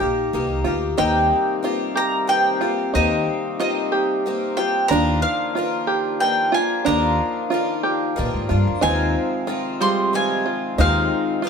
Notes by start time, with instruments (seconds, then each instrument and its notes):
Already playing: mandolin D#5
0.00 upright bass A#1, twelve-string acoustic guitar A#3 D#4 G4, five-string banjo G4
0.33 upright bass C2, twelve-string acoustic guitar D#3 A#3 D#4 G4
0.64 upright bass D2, twelve-string acoustic guitar A#3 D#4 G4, five-string banjo F4
0.97 upright bass D#2, harmonium C3 G3 A#3 D#4, twelve-string acoustic guitar D#3 A#3 C4 G4, five-string banjo D#4, mandolin G5
1.63 twelve-string acoustic guitar D#3 A#3 C4 G4, five-string banjo F4
1.95 five-string banjo G4, mandolin A#5
2.27 twelve-string acoustic guitar D#3 A#3 C4 G4, mandolin G5
2.61 twelve-string acoustic guitar A#3 C4 G4, five-string banjo F4
2.94 upright bass D#2, twelve-string acoustic guitar D#3 A#3 C4 G4, harmonium C4, five-string banjo D#4, mandolin D#5
3.59 twelve-string acoustic guitar D#3 A#3 C4 G4, five-string banjo F4, mandolin D#5
3.92 five-string banjo G4
4.26 twelve-string acoustic guitar D#3 A#3 C4 G4
4.57 twelve-string acoustic guitar A#3 C4 G4, five-string banjo F4, mandolin G5
4.88 upright bass D#2, twelve-string acoustic guitar D#3 A#3, harmonium F3 A#3 F4, five-string banjo D4, mandolin A#5
4.93 twelve-string acoustic guitar D4 F4
5.22 mandolin F5
5.55 twelve-string acoustic guitar D#3 A#3 D4 F4, five-string banjo F4
5.87 five-string banjo G4
6.20 twelve-string acoustic guitar D#3 A#3 D4 F4, mandolin G5
6.52 twelve-string acoustic guitar D4 F4, five-string banjo F4, mandolin G#5
6.56 twelve-string acoustic guitar A#3
6.85 upright bass D#2, twelve-string acoustic guitar D#3 A#3 D4, five-string banjo D4, mandolin A#5
6.89 twelve-string acoustic guitar F4
7.50 twelve-string acoustic guitar D#3 A#3 D4 F4, five-string banjo F4
7.83 five-string banjo G4
8.16 upright bass A#2, twelve-string acoustic guitar D#3 A#3 D4 F4
8.34 upright bass G#2
8.49 upright bass G2, twelve-string acoustic guitar A#3 D4 F4, five-string banjo F4
8.67 upright bass F2
8.81 upright bass D#2, harmonium C3 C4, twelve-string acoustic guitar D#3 G#3 C4 F4, five-string banjo D#4, mandolin G#5
9.47 twelve-string acoustic guitar D#3 G#3 C4 F4, five-string banjo F4
9.81 five-string banjo G3, twelve-string acoustic guitar G#3 C4 F4, mandolin C6
10.13 twelve-string acoustic guitar D#3 G#3 C4 F4, mandolin G#5
10.46 five-string banjo F4
10.78 upright bass D#2, twelve-string acoustic guitar D#3 G#3 C4 F4, five-string banjo D#4, mandolin F5
11.42 twelve-string acoustic guitar D#3 G#3 C4 F4, five-string banjo F4